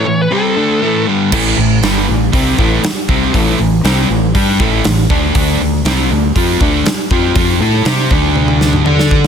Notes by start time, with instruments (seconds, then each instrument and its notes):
Already playing: lead electric guitar C#5
0.06 overdriven electric guitar A2 E3
0.22 lead electric guitar B4
0.31 overdriven electric guitar C3 G3 C4, lead electric guitar A4
0.56 overdriven electric guitar D3 A3 D4
0.82 overdriven electric guitar A2 E3 A3
1.07 overdriven electric guitar G2 D3 G3
1.32 fingered electric bass A1, overdriven electric guitar A2 E3 A3, kick, crash
1.57 fingered electric bass A1, overdriven electric guitar A2 E3
1.83 fingered electric bass G1, overdriven electric guitar G2 D3 G3, snare, open hi-hat
2.09 fingered electric bass A1, overdriven electric guitar A2 E3
2.33 fingered electric bass C2, overdriven electric guitar C3 G3 C4, kick, open hi-hat
2.59 fingered electric bass A1, overdriven electric guitar A2 E3 A3, kick
2.84 muted fingered electric bass stroke, muted overdriven electric guitar stroke, snare, open hi-hat
3.09 fingered electric bass C2, overdriven electric guitar C3 G3 C4, kick
3.34 fingered electric bass A1, overdriven electric guitar A2 E3 A3, kick, open hi-hat
3.59 fingered electric bass A1, overdriven electric guitar A2 E3
3.84 fingered electric bass C2, overdriven electric guitar C3 G3 C4, snare, open hi-hat
4.09 fingered electric bass A1, overdriven electric guitar A2 E3
4.35 fingered electric bass G2, overdriven electric guitar G3 D4 G4, kick, open hi-hat
4.60 fingered electric bass A1, overdriven electric guitar A2 E3 A3, kick
4.84 fingered electric bass A1, overdriven electric guitar A2 E3, snare, open hi-hat
5.10 fingered electric bass D2, overdriven electric guitar D3 A3 D4, kick
5.35 fingered electric bass D2, overdriven electric guitar D3 A3 D4, kick, open hi-hat
5.60 fingered electric bass D2, overdriven electric guitar D3 A3
5.85 fingered electric bass C2, overdriven electric guitar C3 G3 C4, snare, open hi-hat
6.10 fingered electric bass D2, overdriven electric guitar D3 A3
6.36 fingered electric bass F2, overdriven electric guitar F3 C4 F4, kick, open hi-hat
6.60 fingered electric bass D2, overdriven electric guitar D3 A3 D4, kick
6.86 muted overdriven electric guitar stroke, snare, open hi-hat
7.11 fingered electric bass F2, overdriven electric guitar F3 C4 F4, kick
7.35 fingered electric bass F2, overdriven electric guitar F3 C4 F4, kick, open hi-hat
7.60 fingered electric bass A2, overdriven electric guitar A3 E4 A4
7.85 fingered electric bass C3, overdriven electric guitar C4 G4 C5, snare, open hi-hat
8.10 fingered electric bass D2, overdriven electric guitar D3 A3 D4, kick
8.36 high tom
8.48 high tom
8.61 snare
8.73 mid tom
8.85 fingered electric bass D3, overdriven electric guitar D4 A4 D5, mid tom
8.99 snare
9.11 kick